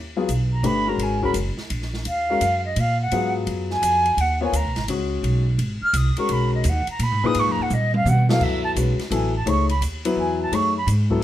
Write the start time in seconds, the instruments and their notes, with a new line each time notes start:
Already playing: upright bass D#2
0.16 grand piano F#3 B3 F4 G#4
0.29 upright bass B1, hi-hat pedal, ride
0.53 flute A#5
0.63 upright bass G1, grand piano A3 D4 G4 B4, flute B5, ride
0.87 grand piano G#3 C#4 F#4 A#4, flute A#5
0.98 upright bass G#1, ride
1.03 flute G#5
1.22 grand piano G#3 C#4 F#4 A#4, flute B5, kick
1.34 upright bass F#1, hi-hat pedal, ride
1.57 muted upright bass stroke, snare
1.70 upright bass A#1, ride
1.82 snare
1.94 snare
2.05 upright bass D#2, flute F5, ride
2.30 grand piano G#3 C#4 F#4 A#4
2.41 upright bass F#2, hi-hat pedal, ride
2.65 flute D#5
2.76 upright bass A#2, flute F5, ride
3.01 flute F#5
3.11 upright bass G#2, grand piano F#3 B3 F4 G#4, ride
3.47 upright bass F#2, ride
3.70 flute G#5, snare
3.82 upright bass F2, hi-hat pedal, ride
4.06 ride
4.17 upright bass D#2, flute F#5, ride
4.41 grand piano B3 F4 A#4 C#5, flute G#5
4.53 upright bass D2, flute A#5, hi-hat pedal, ride
4.65 upright bass B1
4.76 upright bass G#1, snare, ride
4.88 upright bass C#2, grand piano G#3 C#4 F#4 G#4, ride
5.23 upright bass B1, ride
5.58 upright bass G#1, ride
5.81 flute F6, muted upright bass stroke
5.93 upright bass C2, flute D#6, hi-hat pedal, ride
6.17 grand piano G#3 C#4 F#4 A#4, flute C#6, muted upright bass stroke, ride
6.29 upright bass B1, flute B5, ride
6.54 flute D#5
6.64 upright bass D#2, hi-hat pedal, ride
6.69 flute F#5
6.87 flute A#5, muted upright bass stroke, ride
6.99 upright bass A#2, flute B5, ride
7.11 upright bass G#2
7.23 upright bass F#2, grand piano A#2 D#4 G#4 B4, flute D#6
7.34 upright bass G#2, ride
7.39 flute C#6
7.47 upright bass F#2
7.51 flute A#5
7.59 upright bass D#2, flute F#5
7.70 upright bass A#2, flute D#5, hi-hat pedal, high tom
7.94 flute F5, high tom
8.05 upright bass B2, flute F#5, hi-hat pedal, mid tom
8.29 grand piano F#3 B3 E4 A4, flute F5, snare
8.41 upright bass F#2, flute E5, kick, crash
8.64 flute A5
8.76 upright bass B1, grand piano G#3 C#4 F#4 B4, hi-hat pedal, ride
8.99 muted upright bass stroke, snare, ride
9.11 upright bass A1, grand piano F#3 B3 E4 A4, flute G#5, ride
9.36 flute A5
9.46 upright bass C#2, grand piano A3 D#4 G#4 C#5, flute C#6, ride
9.69 flute B5, ride
9.81 upright bass D#2, hi-hat pedal, ride
10.05 grand piano F#3 B3 E4 B4, ride
10.17 upright bass E2, flute G#5
10.42 flute A5
10.52 upright bass F#2, grand piano A3 D#4 G#4 C#5, flute C#6, ride
10.77 flute B5
10.87 upright bass G#2, hi-hat pedal, ride
11.10 grand piano F#3 B3 E4 A4, kick